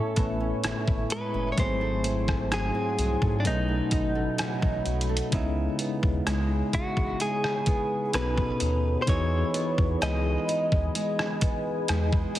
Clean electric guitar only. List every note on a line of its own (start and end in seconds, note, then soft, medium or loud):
0.00 1.07 A4 medium
1.12 1.52 B4 medium
1.52 1.58 C#5 medium
1.60 2.53 C5 medium
2.54 3.35 G#4 medium
3.40 3.46 D4 medium
3.47 4.83 D#4 medium
6.75 7.21 F#4 medium
7.21 8.11 G#4 medium
8.15 9.02 B4 loud
9.02 9.08 C5 medium
9.09 10.03 C#5 loud
10.03 12.33 D#5 medium